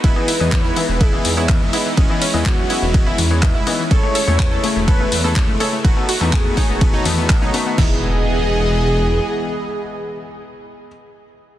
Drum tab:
CC |----------------|----------------|----------------|----------------|
RD |x---x---x---x---|x---x---x---x---|x---x---x---x---|x---x---x---x---|
HH |--o---o---o---o-|--o---o---o---o-|--o---o---o---o-|--o---o---o---o-|
CP |----x-------x---|----x-------x---|----x-------x---|---xx-------x---|
SD |----------------|----------------|----------------|----------------|
BD |o---o---o---o---|o---o---o---o---|o---o---o---o---|o---o-o-o---o---|

CC |x---------------|----------------|
RD |----------------|----------------|
HH |----------------|----------------|
CP |----------------|----------------|
SD |o---------------|----------------|
BD |o---------------|----------------|